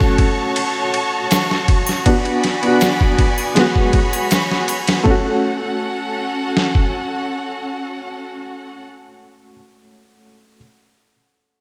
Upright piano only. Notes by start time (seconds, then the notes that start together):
Already playing: A3 C#4 F#4
2.06 B3 D4 F#4
2.62 B3 D4
2.67 F#4
3.55 G#3 B3
3.60 F#4
5.03 A3 C#4
5.10 F#4